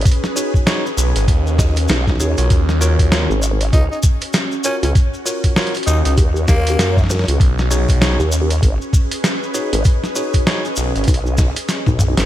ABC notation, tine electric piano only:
X:1
M:4/4
L:1/16
Q:"Swing 16ths" 1/4=98
K:Cblyd
V:1 name="Tine electric piano"
z2 [^D^F^G^c]2 [DFGc] z4 z [DFG^d] z3 [DFGc] [=F^FBc] | z2 [FGBd]2 [FGBd] z8 z [FGBd] z | z2 [FGBd]2 [FGBd] z8 z3 | z2 [^D^F^G^c]2 [DFGc] z8 z [DFGc] z |
z2 [^D^F^G^c]2 [DFGc] z8 z3 |]